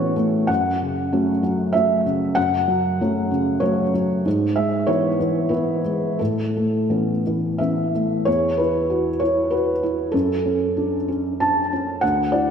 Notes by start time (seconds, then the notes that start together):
Already playing: A2 E3 A3 B3 C#4 F#4 A4 C#5
0.16 A3
0.47 F#2 F#5
0.82 C#3
1.12 F#3 A3 C#4
1.43 F#3
1.73 F#3 A3 C#4 E5
2.06 C#3
2.35 F#2 F#5
2.68 F#3
3.01 F#3 A3 C#4
3.31 C#3
3.60 F#3 A3 C#4 C#5
3.94 F#3
4.26 G#2
4.56 G#3 E5
4.87 E3 B3 E4 C#5
5.20 E3
5.49 E3 B3 E4 B4
5.84 G#3
6.19 A2 A4
6.57 A3
6.90 E3 B3 C#4
7.27 E3
7.58 E3 B3 C#4 E5
7.95 A3
8.25 E2 C#5
8.57 E4 B4
8.90 F#4
9.20 E4 C#5
9.50 F#4 B4
9.83 E4
10.12 F#2 A4
10.45 C#4
10.77 D4
11.08 C#4
11.40 D4 A5
11.73 C#4
12.01 D2 F#5
12.32 E4 D5